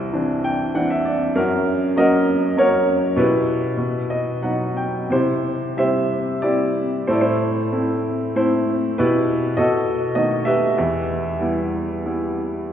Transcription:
Already playing: C2 E4 G4 C5
0.13 E3 C4 D4
0.44 G5
0.74 E3 C4 D4 F#5
0.90 E5
1.05 D5
1.35 F#2 C#4 F#4 A#4
1.96 F#3 A#3 C#4 F#4 A#4 D#5
2.57 F#3 A#3 C#4 F#4 A#4 C#5
3.16 B2 E4 G4 B4
3.77 B2
4.10 D#5
4.42 F#3 B3 D#4 F#5
4.77 G5
5.10 C3 E4 G4 C5
5.77 G3 C4 E4 G4 C5 E5
6.42 G3 C4 E4 G4 D5
7.07 A2 E4 A4 C5
7.12 D5
7.21 E4 A4 C5
7.72 A3 C4 E4
8.35 A3 C4 E4 C5
8.98 B2 E4 G4 B4
9.57 B2 F#4 A4 D#5
10.15 D#3 A3 B3 D#5
10.45 G4 B4 E5
10.78 E2
11.39 G3 B3 E4
12.05 G3 B3 E4

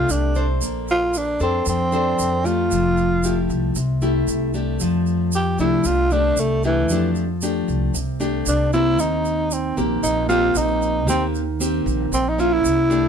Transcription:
Already playing: C3 A3 D4 F4 G4
0.09 C2 D4, shaker
0.35 D4 A4 C5, shaker
0.61 A#1 A#3, shaker
0.88 F4, shaker
1.14 D4, shaker
1.40 F2 C4 D4 A4 C5, shaker
1.66 F2 F3 C4, shaker
1.92 D4 A4 C5 D5, shaker
2.19 F2, shaker
2.45 A3 F4 G4, shaker
2.71 F1 F3, shaker
2.97 shaker
3.23 A3 E4 G4, shaker
3.50 C2, shaker
3.75 C2 C3, shaker
4.02 A3 E4 G4, shaker
4.27 C2, shaker
4.54 A3 D4 G4, shaker
4.80 F2 F3, shaker
5.06 shaker
5.32 G4, shaker
5.58 C2 A3 D4 E4 G4, shaker
5.84 C2 C3 F4, shaker
6.11 A3 D4 G4, shaker
6.37 C2 A3, shaker
6.63 E3 A3 D4 G4, shaker
6.89 F2 F3 A3 D4 G4, shaker
7.15 shaker
7.41 A3 D4 G4, shaker
7.68 C2, shaker
7.94 C2 C3, shaker
8.20 A3 D4 G4, shaker
8.46 C2 D4, shaker
8.73 A#3 C4 E4 G4, shaker
8.98 D#2 D#3 D#4, shaker
9.25 shaker
9.51 C4, shaker
9.77 A#1 A#3 C4 G4, shaker
10.03 A#1 A#2 D#4, shaker
10.29 A#3 C4 F4 G4, shaker
10.55 A#1 D#4, shaker
10.82 shaker
11.07 D#2 D#3 A#3 C4 G4, shaker
11.35 shaker
11.60 A#3 C4 G4, shaker
11.86 A#1, shaker
12.12 A#1 A#2 C4, shaker
12.29 D#4
12.38 A#3 C#4 E4 F4, shaker
12.53 E4
12.64 C2, shaker
12.90 A3 D4 G4, shaker

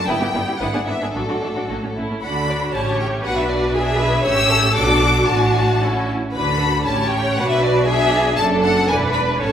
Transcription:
0.07 G1 G2 B3 E4 B4 G5
0.20 G2 B3 E4 G4
0.33 G1 G2 G3 B3 E4
0.46 G2 B3 E4 G4
0.59 G#1 G#2 B3 D4 E4 B4 F#5
0.73 G#2 B3 D4 G#4
0.86 G#1 G#2 B3 D4 E4 E5
1.01 G#2 B3 D4 G#4
1.14 A1 A2 F#3 D4 F#4 A4
1.28 A2 F#3 D4 F#4
1.41 A1 A2 F#3 A3 D4
1.55 A2 F#3 D4 F#4
1.68 A1 A2 A3 C#4 F#4
1.83 A2 A3 C#4
1.96 A1 A2 A3 C#4 E4
2.09 A2 A3 C#4
2.22 D2 D3 D4 F#4 F#5 B5
2.48 D5
2.73 A1 A2 C#4 G4 C#5 A5
2.99 G5
3.24 B1 B2 D4 F#4 B4 F#5
3.38 E5
3.50 D5
3.75 D4 G#4 E5
4.00 B4
4.25 A1 A2 C#4 G4 C#5 E6
4.51 A4
4.76 B1 B2 D4 F#4 D6
5.29 A1 A2 D4 F#4 A5
5.82 C#4 E4
6.34 D2 D3 D4 F#4 B4 B5
6.60 A4
6.86 A1 A2 C#4 G4 C#5 A5
7.11 G5
7.36 B1 B2 D4 F#4 B4 F#5
7.49 E5
7.62 D5
7.87 D4 G#4 E5
8.37 F#1 F#2 D4 A4 A5
8.63 F#5
8.88 E1 E2 D4 B4 G#5
9.14 B5
9.40 A1 A2 C#4 A4 C#5 A5

